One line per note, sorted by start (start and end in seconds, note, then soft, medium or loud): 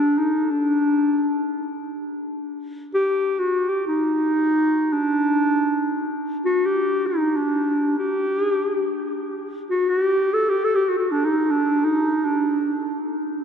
0.00 0.20 D4 medium
0.18 0.52 D#4 medium
0.51 1.70 D4 medium
2.94 3.41 G4 medium
3.39 3.71 F#4 medium
3.69 3.87 G4 medium
3.87 4.94 D#4 medium
4.93 6.09 D4 medium
6.45 6.67 F#4 medium
6.66 7.08 G4 medium
7.07 7.38 D#4 medium
7.36 7.95 D4 medium
7.98 8.41 G4 medium
8.41 8.52 G#4 medium
8.52 9.18 G4 medium
9.70 9.89 F#4 medium
9.89 10.00 F#4 medium
10.00 10.35 G4 medium
10.34 10.51 A4 medium
10.49 10.66 G4 medium
10.64 10.77 A4 medium
10.75 10.90 G4 medium
10.89 10.98 F#4 medium
10.99 11.13 F#4 medium
11.11 11.27 D4 medium
11.25 11.53 D#4 medium
11.51 11.86 D4 medium
11.85 12.26 D#4 medium
12.25 13.07 D4 medium